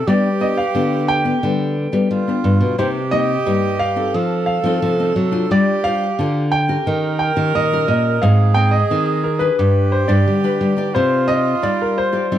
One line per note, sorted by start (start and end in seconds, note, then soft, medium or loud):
0.07 0.65 G3 loud
0.07 0.72 G3 soft
0.07 0.28 B3 medium
0.07 0.28 D4 medium
0.07 1.84 G4 loud
0.07 0.28 G4 medium
0.07 0.43 D5 medium
0.40 0.61 B3 medium
0.40 0.61 D4 medium
0.40 0.61 G4 medium
0.40 0.46 D#5 medium
0.57 1.10 F5 medium
0.75 1.33 D3 medium
0.75 1.40 D3 medium
0.75 1.21 B3 medium
0.75 1.21 D4 medium
0.75 1.21 G4 medium
1.08 2.07 G5 loud
1.25 1.37 B3 medium
1.25 1.37 D4 medium
1.25 1.37 G4 medium
1.43 1.86 D3 medium
1.43 2.08 G3 medium
1.43 1.75 B3 soft
1.43 1.75 D4 medium
1.43 1.76 G4 medium
1.92 2.08 G3 medium
1.92 2.22 B3 medium
1.92 2.22 D4 medium
1.92 2.22 G4 medium
2.10 2.76 D3 soft
2.10 2.40 G3 medium
2.10 2.75 F4 medium
2.28 2.76 B3 medium
2.28 2.77 D4 medium
2.28 2.77 G4 medium
2.44 2.60 G2 medium
2.60 2.76 B2 medium
2.78 3.43 C3 medium
2.78 3.37 C3 loud
2.78 2.99 A#3 soft
2.78 2.99 D#4 medium
2.78 4.16 G4 loud
2.78 2.99 G4 medium
2.78 2.86 C5 medium
3.11 3.32 A#3 soft
3.11 3.33 D#4 medium
3.11 3.33 G4 medium
3.11 3.82 D#5 loud
3.46 4.11 G2 medium
3.46 4.05 G3 medium
3.46 3.78 A#3 medium
3.46 3.79 D#4 medium
3.46 3.79 G4 medium
3.79 4.45 F5 loud
3.96 4.60 C4 medium
3.96 4.60 D#4 medium
3.96 4.60 A4 medium
4.14 4.79 F3 soft
4.14 4.58 F3 medium
4.14 5.53 A4 loud
4.46 5.12 F5 medium
4.64 4.79 F3 medium
4.64 4.94 C4 medium
4.64 4.94 D#4 medium
4.64 4.95 A4 medium
4.82 5.48 C3 soft
4.82 5.11 F3 medium
5.00 5.28 C4 medium
5.00 5.29 D#4 medium
5.00 5.29 A4 medium
5.16 5.45 F#3 medium
5.32 5.78 D4 medium
5.32 5.79 F4 medium
5.32 5.79 C5 medium
5.50 6.15 G3 medium
5.50 6.09 G3 loud
5.50 6.60 G4 loud
5.50 5.86 D5 medium
5.84 6.05 D4 medium
5.84 6.05 F4 soft
5.84 6.05 C5 medium
5.84 6.55 F5 loud
6.19 6.77 D3 medium
6.19 6.84 D3 medium
6.19 6.51 D4 medium
6.19 6.51 F4 medium
6.19 6.51 C5 medium
6.52 7.16 G5 loud
6.68 7.32 C#4 medium
6.68 7.32 G4 medium
6.68 7.32 A#4 medium
6.86 7.51 D#3 medium
6.86 7.30 D#3 medium
6.86 8.24 A#4 loud
7.19 7.52 G5 medium
7.36 7.52 D#3 medium
7.36 7.66 C#4 medium
7.36 7.66 G4 medium
7.36 7.66 A#4 medium
7.55 8.20 A#2 medium
7.55 7.84 D#3 medium
7.55 7.86 D#5 loud
7.73 8.21 C#4 medium
7.73 8.21 G4 medium
7.73 8.21 A#4 medium
7.88 8.18 A#2 medium
7.88 8.24 D#5 medium
8.22 8.81 G#2 loud
8.22 8.88 G#3 medium
8.22 8.51 C4 medium
8.22 8.52 D#4 medium
8.22 9.58 G#4 loud
8.22 8.52 A#4 medium
8.22 8.58 F5 medium
8.54 8.76 C4 medium
8.54 8.77 D#4 medium
8.54 8.77 A#4 medium
8.54 8.72 G5 loud
8.71 9.20 D#5 medium
8.90 9.56 D#3 medium
8.90 9.49 D#3 medium
8.90 9.23 C4 medium
8.90 9.23 D#4 medium
8.90 9.23 A#4 medium
9.24 9.40 A#4 medium
9.39 10.04 D4 medium
9.39 10.04 G4 soft
9.39 9.94 B4 medium
9.39 10.04 B4 medium
9.58 10.03 G2 medium
9.58 10.24 G3 medium
9.58 10.96 G4 loud
9.92 10.09 C5 medium
10.08 10.24 G2 medium
10.08 10.38 D4 medium
10.08 10.38 G4 medium
10.08 10.38 B4 medium
10.08 10.57 D5 medium
10.26 10.92 D3 medium
10.26 10.57 G3 medium
10.44 10.73 D4 medium
10.44 10.73 G4 medium
10.44 10.73 B4 medium
10.61 10.90 G3 medium
10.77 11.23 D#4 medium
10.77 11.24 G4 medium
10.77 11.24 D5 medium
10.94 11.54 C3 loud
10.94 11.60 C4 medium
10.94 12.38 F4 loud
10.94 11.30 C5 medium
11.28 11.49 D#4 medium
11.28 11.49 G4 medium
11.28 11.49 D5 medium
11.28 11.60 D#5 loud
11.62 12.28 G3 medium
11.62 12.21 G3 medium
11.62 11.95 D#4 medium
11.62 11.95 G4 medium
11.62 11.81 D5 medium
11.62 11.96 D5 medium
11.82 11.97 A#4 medium
11.98 12.38 C5 medium
12.12 12.25 D#4 medium
12.12 12.25 G4 medium
12.12 12.26 D5 medium
12.31 12.38 G3 medium
12.31 12.38 C4 soft
12.31 12.38 D#4 soft
12.31 12.38 G4 medium
12.31 12.38 D5 medium